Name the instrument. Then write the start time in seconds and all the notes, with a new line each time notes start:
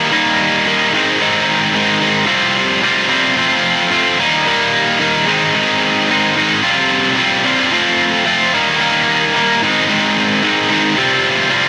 distorted electric guitar
Already playing: D#3 G3 A#3 D#4
0.11 D#3 G3 A#3 D#4
0.66 D#3 G3 A#3 D#4
0.92 G#2 D#3 G#3 C4 D#4
1.20 G#2 D#3 G#3 C4 D#4
1.74 G#2 D#3 G#3 C4 D#4
2.00 G#2 D#3 G#3 C4 D#4
2.26 C3 G3 C4 F4
2.82 C3 G3 C4 F4
3.08 C3 G3 C4 F4
3.36 F3 A3 C4 F4
3.91 F3 A3 C4 F4
4.18 D#3 G3 A#3 D#4
4.46 D#3 G3 A#3 D#4
4.99 D#3 G3 A#3 D#4
5.26 G#2 D#3 G#3 C4 D#4
5.54 G#2 D#3 G#3 C4 D#4
6.09 G#2 D#3 G#3 C4 D#4
6.35 G#2 D#3 G#3 C4 D#4
6.62 C3 G3 C4 F4
7.16 C3 G3 C4 F4
7.44 C3 G3 C4 F4
7.72 F3 A3 C4 F4
8.25 F3 A3 C4 F4
8.54 D#3 G3 A#3 D#4
8.79 D#3 G3 A#3 D#4
9.34 D#3 G3 A#3 D#4
9.62 G#2 D#3 G#3 C4 D#4
9.88 G#2 D#3 G#3 C4 D#4
10.43 G#2 D#3 G#3 C4 D#4
10.70 G#2 D#3 G#3 C4 D#4
10.97 C3 G3 C4 F4
11.50 C3 G3 C4 F4